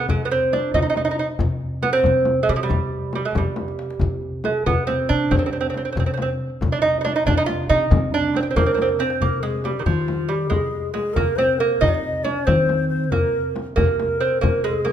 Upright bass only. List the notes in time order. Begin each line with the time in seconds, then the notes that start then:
0.09 C3
0.74 C3
1.40 C3
2.06 C3
2.49 C3
2.70 C3
3.36 C3
4.01 C3
4.67 C3
5.10 C3
5.32 C3
5.97 C3
6.62 C3
7.28 C3
7.70 C3
7.91 C3
8.56 C3
9.22 C3
9.86 D#3
10.51 C3
11.17 C3
11.82 C3
12.48 D#3
13.13 C3
13.77 C3
14.43 C3